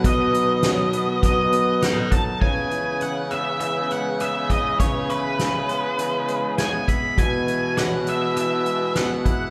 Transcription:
<<
  \new Staff \with { instrumentName = "Lead electric guitar" } { \time 4/4 \key cis \minor \tempo 4 = 101 dis''2 dis''4 fis''8 a''8 | gis''4 fis''8 e''8 e''8 fis''8 e''8 dis''8 | cis''8 b'2~ b'8 gis''8 b''8 | gis''4 fis''8 e''8 e''4 fis''4 | }
  \new Staff \with { instrumentName = "Vibraphone" } { \time 4/4 \key cis \minor b'4 cis''8 b'8 b'4 a'4 | b'4 cis''8 b'8 b'4 gis'4 | b'4 cis''8 b'8 b'4 gis'4 | b'4 cis''8 b'8 r4 gis'4 | }
  \new Staff \with { instrumentName = "String section" } { \time 4/4 \key cis \minor << { <fis b b'>1 | <gis b b'>1~ | <gis b b'>1~ | <gis b b'>1 | } \\ { <dis fis'>1 | <cis e'>1~ | <cis e'>1 | <e gis'>1 | } >> }
  \new Staff \with { instrumentName = "Clean electric guitar" } { \clef bass \time 4/4 \key cis \minor <b, fis b dis'>8 fis8 fis8 b8 fis8 b8 dis'8 fis8 | cis8 e8 e8 b8 e8 gis8 b8 e'8 | cis8 e8 e8 b8 e8 gis8 b8 e'8 | b,8 e8 e8 b8 e8 gis8 b8 e'8 | }
  \new Staff \with { instrumentName = "Baritone saxophone" } { \clef bass \time 4/4 \key cis \minor b,2.~ b,8 r8 | cis1~ | cis2.~ cis8 r8 | b,1 | }
  \new DrumStaff \with { instrumentName = "Drums" } \drummode { \time 4/4 <hh bd>8 hh8 <hh sn>8 hh8 <hh bd>8 hh8 <hh sn>8 <hh bd>8 | <cymc bd>8 hh8 hh8 hh8 hh8 hh8 hh8 <hh bd>8 | <hh bd>8 hh8 <hh sn>8 hh8 hh8 hh8 <hh sn>8 <hh bd>8 | <hh bd>8 hh8 <hh sn>8 hh8 hh8 hh8 <hh sn>8 <hh bd>8 | }
>>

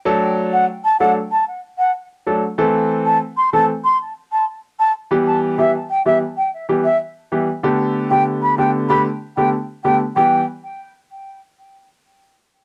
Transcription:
<<
  \new Staff \with { instrumentName = "Flute" } { \time 4/4 \key e \minor \tempo 4 = 95 r8. fis''16 r16 a''16 fis''16 r16 a''16 r8 fis''16 r4 | r8. a''16 r16 c'''16 a''16 r16 c'''16 r8 a''16 r8 a''16 r16 | r8. e''16 r16 g''16 e''16 r16 g''16 r8 e''16 r4 | r8. g''16 r16 b''16 g''16 r16 b''16 r8 g''16 r8 g''16 r16 |
g''8 r2. r8 | }
  \new Staff \with { instrumentName = "Grand piano" } { \time 4/4 \key e \minor <fis a d' a'>4 r8 <fis a d' a'>16 r4. r16 <fis a d' a'>16 r16 | <e a c' a'>4 r8 <e a c' a'>16 r2 r16 | <e g b g'>8. <e g b g'>16 r8 <e g b g'>16 r8. <e g b g'>16 r8. <e g b g'>16 r16 | <d a b g'>8. <d a b g'>8. <d a b g'>8 <d a b g'>16 r8 <d a b g'>16 r8 <d a b g'>16 r16 |
<e g b g'>8 r2. r8 | }
>>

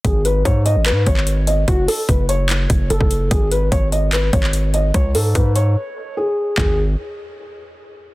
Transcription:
<<
  \new Staff \with { instrumentName = "Grand piano" } { \time 4/4 \key gis \phrygian \tempo 4 = 147 gis'8 b'8 cis''8 dis''8 b'8 cis''4 dis''8 | fis'8 a'8 b'8 cis''4. a'4 | gis'8 b'8 cis''8 dis''8 b'8 cis''4 dis''8 | cis''8 a'8 b'8 cis''4. gis'4 |
gis'8 r2. r8 | }
  \new Staff \with { instrumentName = "808-style bass" } { \clef bass \time 4/4 \key gis \phrygian gis,,4 gis,8. a,,16. gis,16. gis,,4. | fis,,8 r8 fis,,4. fis,,8 fis,,16 fis,,8. | gis,,4 gis,,4. gis,,4. | cis,8 gis,8 gis,4 r2 |
gis,,4 r2. | }
  \new DrumStaff \with { instrumentName = "Drums" } \drummode { \time 4/4 <hh bd>8 hh8 <hh bd>8 hh8 <hc hh>8 <hh bd>16 hc16 hh8 hh8 | <hh bd>8 hho8 <hh bd>8 hh8 <hc hh>8 <hh bd>8 hh16 bd16 hh8 | <hh bd>8 hh8 <hh bd>8 hh8 <hc hh>8 <hh bd>16 hc16 hh8 hh8 | <hh bd>8 hho8 <hh bd>8 hh8 r4 r4 |
<hc bd tomfh>4 r4 r4 r4 | }
>>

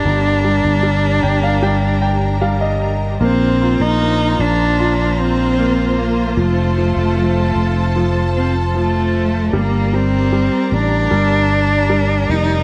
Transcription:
<<
  \new Staff \with { instrumentName = "String section" } { \time 4/4 \key g \minor \tempo 4 = 76 << { <bes' bes''>1 | <c'' bes''>1 | <a' a''>1 | <bes' d'' bes''>1 | } \\ { g'1 | f'1~ | f'1 | g'1 | } >> }
  \new Staff \with { instrumentName = "Cello" } { \time 4/4 \key g \minor d'2.~ d'8 r8 | c'8. ees'8. d'4 c'4 bes8 | a2~ a8 c'8 a4 | bes8 c'4 d'2 ees'8 | }
  \new Staff \with { instrumentName = "Grand piano" } { \time 4/4 \key g \minor r4. g''16 f''16 g''8 g''8 f''16 ees''8. | r1 | r1 | r1 | }
  \new Staff \with { instrumentName = "Grand piano" } { \clef bass \time 4/4 \key g \minor <d g>8 g8 g4 g4 g4 | bes8 f'8 bes4 f'4 bes4 | f8 f8 f4 f4 f4 | g8 g8 g4 g4 g4 | }
  \new Staff \with { instrumentName = "Fretless electric bass" } { \clef bass \time 4/4 \key g \minor g,,8. g,,8. g,,2~ g,,8 | bes,,8. bes,,8. bes,,2~ bes,,8 | f,,8. f,,8. f,,2~ f,,8 | g,,4~ g,,16 r16 a,,8 g,,4. f,,8 | }
>>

